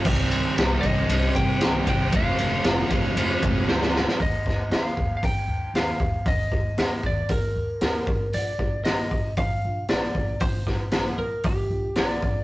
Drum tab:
CC |x---------------|----------------|----------------|----------------|
RD |--x-x-x-x-x-x-x-|x-x-x-x-x-x-----|----------------|----------------|
HH |----------------|----------------|o---o---o---o---|o---o---o---o---|
SD |----o-------o---|----o-------oooo|--o-o-------o---|----o-------o---|
BD |o-----o---o---o-|o-----o---o-----|o-o---o-o-----o-|o-o---o-o-----o-|

CC |----------------|----------------|
RD |----------------|----------------|
HH |o---o---o---o---|o---o---o---o---|
SD |----o-------o---|--o-o-------o---|
BD |--o---o-o-----o-|o-o-----o-----o-|